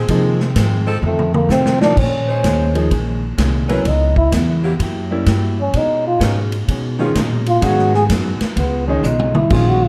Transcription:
Already playing: F3 C4 D#4 G#4
0.08 F2 C3 D#3 F3 G#3 A#3 D#4 G#4, kick, ride
0.12 C4
0.40 snare
0.56 F2 G#2 D#3 G#3 C4, kick, snare, hi-hat pedal, ride
0.87 F3 C4 D#4 A4
1.02 F2 D#3 A3, mid tom
1.07 C4
1.19 mid tom
1.34 A#3, mid tom
1.49 F2 C3 D#3 A3 C4, snare, hi-hat pedal
1.66 snare
1.81 F3 A#3 D4 D#4 A#4, snare
1.96 A#2 D#3 G#3 C#4, kick, crash
2.28 G#3 C#4 D#4 C5
2.43 D#2 A#2 D#3 G#3 C#4, kick, snare, hi-hat pedal, ride
2.75 F3 A#3 D#4 G#4, ride
2.91 A#1 A#2 D#3 G#3 C#4, kick, ride
3.38 C2 A#2 D#3 G#3 C#4, kick, snare, hi-hat pedal, ride
3.68 F#3 G#3 B3 C#4 E4 A#4 B4, ride
3.84 C#2 C#3 G#3 B3 D#4 E4, kick, ride
4.16 E4, kick
4.32 E2 C#3 G#3 B3 E4, kick, snare, hi-hat pedal, ride
4.63 F#3 A#3 E4 G4
4.79 F#2 F#3 A#3 E4 G4, kick, ride
5.11 G3 A#3 C#4 E4
5.26 G2 F#3 A#3 E4 G4, kick, snare, hi-hat pedal, ride
5.61 C#4
5.73 B2 G#3 C#4 D#4, kick, ride
6.07 F4
6.20 G#2 B2 D#3 G#3 B3 C#4 D#4 G#4, kick, snare, hi-hat pedal, ride
6.52 ride
6.68 B2 G#3 C#4 D#4, kick, ride
6.99 D#3 G#3 B3 C#4 F4 G#4
7.15 A#2 B2 G#3 C#4 D#4, kick, snare, hi-hat pedal, ride
7.46 F4, ride
7.62 G#2 D#3 F#3 G#3 B3 C#4 D#4 F#4 G#4, kick, ride
7.66 D#4
7.78 snare
7.94 G#4, snare
8.09 F#2 G#2 F#3 B3 D#4, kick, snare, hi-hat pedal, ride
8.40 muted upright bass stroke, snare, ride
8.56 C#2 C#3 G#3 B3 F4, kick, ride
8.88 D#3 G#3 C#4 D#4
9.03 B1 C#3 G#3 B3 D#4 F4, hi-hat pedal
9.19 high tom
9.35 E4, mid tom
9.50 A#1 D#3 F#3 G#3 A#3 C#4 F4 G#4, kick, crash
9.68 F#4
9.84 F4

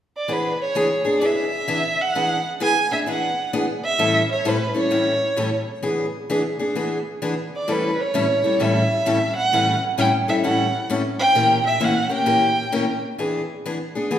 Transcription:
0.17 D5
0.28 E3 B3 D4 G#4
0.32 B4
0.62 C#5
0.75 E3 B3 D4 G#4
1.05 B3 D4 G#4
1.19 E3 B3 D4 G#4 D5
1.25 E5
1.68 E3 B3 D4 G#4
2.01 F#5
2.15 E3 B3 D4 G#4
2.60 E3 B3 D4 G#4 G#5
2.91 B3 D4 G#4 E5
3.06 E3 B3 D4 G#4 F#5
3.53 E3 B3 D4 G#4
3.85 E5
3.99 A2 E3 G3 C#4 E4 A4
4.32 C#5
4.45 A2 E3 G3 C#4 E4 A4
4.49 B4
4.74 G3 C#4 E4 A4
4.79 C#5
4.91 A2 E3 G3 C#4 E4 A4
5.37 A2 E3 G3 C#4 E4 A4
5.83 E3 B3 D4 G#4
6.30 E3 B3 D4 G#4
6.59 B3 D4 G#4
6.75 E3 B3 D4 G#4
7.22 E3 B3 D4 G#4
7.56 D5
7.68 A2 E3 G3 C#4 E4 A4 B4
8.01 C#5
8.14 A2 E3 G3 C#4 E4 A4
8.44 G3 C#4 E4 A4
8.60 A2 E3 G3 C#4 E4 A4 E5
9.06 A2 E3 G3 C#4 E4 A4
9.36 F#5
9.53 A2 E3 G3 C#4 E4 A4
9.98 A2 E3 G3 C#4 E4 A4 G5
10.28 G3 C#4 E4 A4 E5
10.44 A2 E3 G3 C#4 E4 A4 F#5
10.90 A2 E3 G3 C#4 E4 A4
11.19 G5
11.35 A#2 E3 A#3 C#4 G4 A#4
11.67 E5
11.80 A#2 E3 A#3 C#4 G4 A#4
11.84 F#5
12.09 A#3 C#4 G4 A#4
12.14 G5
12.26 A#2 E3 A#3 C#4 G4 A#4
12.72 A#2 E3 A#3 C#4 G4 A#4
13.18 E3 B3 D4 G#4
13.66 E3 B3 D4 G#4
13.95 B3 D4 G#4
14.11 E3 B3 D4 G#4

